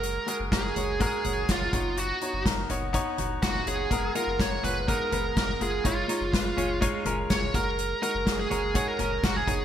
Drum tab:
HH |x-x-x-x-x-x-x-x-|x-x-x-x-x-x-x-x-|x-x-x-x-x-x-x-x-|x-x-x-x-x-x-x-x-|
SD |----o-------o---|----o-------o---|----o-------o---|----o-------o---|
FT |------o---o--o--|------o---o--o--|------o---o--o--|------o---o--o--|
BD |----o---o---o-o-|----o---o---o---|o---o---o---o---|o---o---o---o-o-|

HH |x-x-x-x-x-x-x-x-|
SD |----o-------o---|
FT |------o---o--o--|
BD |----o---o---o-o-|